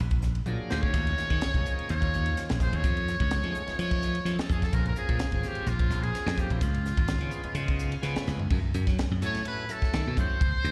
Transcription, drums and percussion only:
0.11 kick, ride
0.22 snare, hi-hat pedal
0.35 ride
0.46 hi-hat pedal, high tom
0.70 snare, hi-hat pedal
0.83 kick
0.94 kick, hi-hat pedal, crash, ride
1.07 ride
1.18 snare, hi-hat pedal
1.30 kick, ride
1.41 snare, hi-hat pedal, ride
1.54 kick, ride
1.66 hi-hat pedal
1.79 ride
1.89 hi-hat pedal, ride
2.02 kick, ride
2.13 hi-hat pedal
2.26 ride
2.37 snare, hi-hat pedal, ride
2.49 snare, ride
2.60 kick, hi-hat pedal
2.73 kick, ride
2.84 kick, hi-hat pedal, ride
2.97 ride
3.08 snare, hi-hat pedal
3.20 kick, ride
3.31 snare, hi-hat pedal, ride
3.44 ride
3.55 hi-hat pedal
3.67 snare, ride
3.79 hi-hat pedal, ride
3.91 kick, ride
4.02 snare, hi-hat pedal
4.15 ride
4.26 snare, hi-hat pedal, ride
4.39 snare, ride
4.50 kick, hi-hat pedal
4.62 kick, snare, ride
4.73 kick, hi-hat pedal, ride
4.86 ride
4.96 hi-hat pedal
5.09 kick, ride
5.19 snare, hi-hat pedal, ride
5.32 kick, ride
5.43 snare, hi-hat pedal
5.55 ride
5.67 hi-hat pedal, ride
5.79 kick, ride
5.90 snare, hi-hat pedal
6.03 ride
6.15 snare, hi-hat pedal, ride
6.27 snare, ride
6.38 kick, hi-hat pedal
6.50 kick, ride
6.61 kick, hi-hat pedal, ride
6.74 ride
6.85 snare, hi-hat pedal
6.97 kick, ride
7.08 snare, hi-hat pedal, ride
7.21 ride
7.31 hi-hat pedal
7.43 ride
7.55 hi-hat pedal, ride
7.68 kick, ride
7.79 hi-hat pedal
7.92 ride
8.03 snare, hi-hat pedal, ride
8.16 snare, ride
8.27 snare, hi-hat pedal
8.39 floor tom
8.51 kick, crash
8.74 hi-hat pedal, ride
8.87 kick, snare, ride
8.99 snare, ride
9.22 snare, hi-hat pedal, ride
9.35 snare, ride
9.45 ride
9.69 hi-hat pedal, ride
9.82 kick, snare
9.93 snare, ride
10.17 kick, hi-hat pedal, ride
10.41 kick, ride
10.65 hi-hat pedal, ride

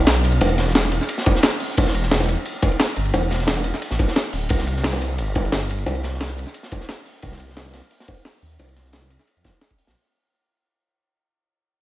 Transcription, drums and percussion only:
0.07 snare, closed hi-hat, ride
0.16 ride
0.24 closed hi-hat, ride
0.32 ride
0.41 closed hi-hat, ride, high bongo
0.49 ride
0.58 snare, closed hi-hat, ride
0.68 snare
0.75 snare, closed hi-hat, ride
0.84 ride, high bongo
0.92 closed hi-hat, ride
1.01 snare
1.09 closed hi-hat, ride
1.18 snare
1.26 kick, closed hi-hat, ride, high bongo
1.35 snare
1.43 snare, closed hi-hat, ride
1.60 closed hi-hat, open hi-hat
1.77 kick, closed hi-hat, ride, high bongo
1.86 snare
1.94 closed hi-hat, ride
2.03 snare
2.11 snare, closed hi-hat, ride
2.20 snare, high bongo
2.29 closed hi-hat, ride
2.45 closed hi-hat, ride
2.62 kick, closed hi-hat, ride, high bongo
2.72 ride
2.80 snare, closed hi-hat, ride
2.89 ride
2.96 closed hi-hat, ride
3.05 ride
3.14 closed hi-hat, ride, high bongo
3.23 ride
3.31 snare, closed hi-hat, ride
3.39 snare
3.47 snare, closed hi-hat, ride
3.57 ride, high bongo
3.64 closed hi-hat, ride
3.74 snare
3.82 closed hi-hat, ride
3.91 snare
3.99 kick, closed hi-hat, ride, high bongo
4.08 snare
4.16 snare, closed hi-hat, ride
4.33 closed hi-hat, open hi-hat
4.49 kick, closed hi-hat, ride, high bongo
4.59 snare
4.67 closed hi-hat, ride
4.77 snare
4.84 snare, closed hi-hat, ride
4.93 snare, high bongo
5.01 closed hi-hat, ride
5.18 closed hi-hat, ride
5.35 kick, closed hi-hat, ride, high bongo
5.45 ride
5.52 snare, closed hi-hat, ride
5.62 ride
5.69 closed hi-hat, ride
5.78 ride
5.86 closed hi-hat, ride, high bongo
5.95 ride
6.04 snare, closed hi-hat, ride
6.14 snare
6.21 snare, closed hi-hat, ride
6.29 ride, high bongo
6.38 closed hi-hat, ride
6.47 snare
6.54 closed hi-hat, ride
6.63 snare
6.72 kick, closed hi-hat, ride, high bongo
6.81 snare
6.89 snare, closed hi-hat, ride
7.06 closed hi-hat, open hi-hat
7.22 kick, closed hi-hat, ride, high bongo
7.32 snare
7.40 closed hi-hat, ride
7.49 snare
7.57 snare, closed hi-hat, ride
7.66 snare, high bongo
7.73 snare, closed hi-hat, ride
7.91 closed hi-hat, open hi-hat
8.00 snare, ride
8.08 kick, closed hi-hat, high bongo
8.18 open hi-hat
8.25 snare, closed hi-hat, ride
8.42 closed hi-hat, open hi-hat
8.52 ride
8.59 closed hi-hat, ride, high bongo
8.68 closed hi-hat, ride
8.76 snare, closed hi-hat, ride
8.85 snare
8.93 snare, closed hi-hat, ride
9.02 ride, high bongo
9.10 closed hi-hat, ride
9.19 snare
9.27 closed hi-hat, ride
9.37 ride
9.44 kick, snare, closed hi-hat, ride, high bongo
9.53 ride
9.61 snare, closed hi-hat
9.71 kick, closed hi-hat
9.78 closed hi-hat, open hi-hat
9.87 snare, closed hi-hat, ride

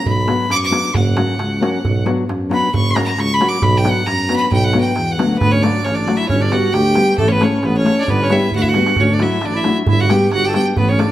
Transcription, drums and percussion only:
0.06 darbuka dum
0.28 darbuka tek
0.50 darbuka tek
0.62 darbuka tek
0.72 darbuka tek
0.84 darbuka tek
0.95 darbuka dum
1.07 darbuka tek
1.17 darbuka tek
1.29 darbuka tek
1.39 darbuka tek
1.63 darbuka tek
1.74 darbuka tek
1.85 darbuka dum
2.06 darbuka tek
2.29 darbuka tek
2.41 darbuka tek
2.51 darbuka tek
2.63 darbuka tek
2.74 darbuka dum
2.96 darbuka tek
3.18 darbuka tek
3.31 darbuka tek
3.41 darbuka tek
3.53 darbuka tek
3.62 darbuka dum
3.85 darbuka tek
4.07 darbuka tek
4.19 darbuka tek
4.29 darbuka tek
4.42 darbuka tek
4.52 darbuka dum
4.63 darbuka tek
4.73 darbuka tek
4.86 darbuka tek
4.96 darbuka tek
5.08 darbuka tek
5.19 darbuka tek
5.31 darbuka tek
5.41 darbuka dum
5.63 darbuka tek
5.86 darbuka tek
6.08 darbuka tek
6.29 darbuka dum
6.52 darbuka tek
6.74 darbuka tek
6.95 darbuka tek
7.18 darbuka dum
7.41 darbuka tek
7.63 darbuka tek
7.86 darbuka tek
8.08 darbuka dum
8.30 darbuka tek
8.52 darbuka dum
8.64 darbuka dum
8.74 darbuka tek
8.86 darbuka tek
8.96 darbuka dum
9.19 darbuka tek
9.41 darbuka tek
9.64 darbuka tek
9.87 darbuka dum
10.09 darbuka tek
10.31 darbuka tek
10.54 darbuka tek
10.77 darbuka dum
10.99 darbuka tek

